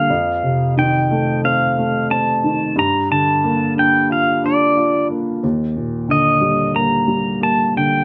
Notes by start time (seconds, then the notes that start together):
Already playing: D3 G3 A#3 F5
0.10 F2
0.43 C3
0.77 D#3 G5
1.11 A3
1.44 C4 F5
1.78 A3
2.11 C4 A5
2.44 D#3
2.76 G2 A#5
3.11 D3 A5
3.44 A#3
3.76 D4 G5
4.10 F4 F5
4.43 D4 D5
4.77 F4
5.10 A#3
5.44 D#2
5.76 A#2
6.09 D3 D#5
6.41 G3
6.75 A#3 A#5
7.08 G3
7.41 A#3 A5
7.76 D3 G5